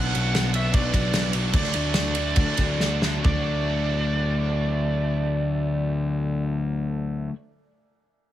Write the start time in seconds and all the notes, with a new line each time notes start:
Already playing: B1 B2 F#3 B3 F#4 F#5 F#6
0.00 D4
0.15 B1 B2 F#3 B3 D4 F#4, ride
0.35 B2 F#3 B3 D4 F#4, snare, ride
0.54 B2 F#3 B3 D4 F#4 E5 E6, ride
0.73 B1 B2 F#3 B3 D4 F#4 D5 D6, kick, ride
0.94 B1 B2 F#3 B3 D4 F#4, kick, ride
1.13 B2 F#3 B3 D4 F#4, snare, ride
1.33 B2 F#3 B3 D4 F#4, ride
1.53 D2 D3 F#3 A3 D4 F#4 D5 D6, kick, ride
1.63 snare
1.74 D2 D3 F#3 A3 D4 F#4, ride
1.94 D3 F#3 A3 D4 F#4, snare, ride
2.15 D3 F#3 A3 D4 F#4, ride
2.36 D2 D3 F#3 A3 D4 F#4, kick, ride
2.57 D2 D3 F#3 A3 D4 F#4, kick, ride
2.80 D3 F#3 A3 D4 F#4, snare
3.02 D3 F#3 A3 D4 F#4, snare
3.24 D2 D3 F#3 A3 D5 D6, kick, floor tom
3.28 D4 F#4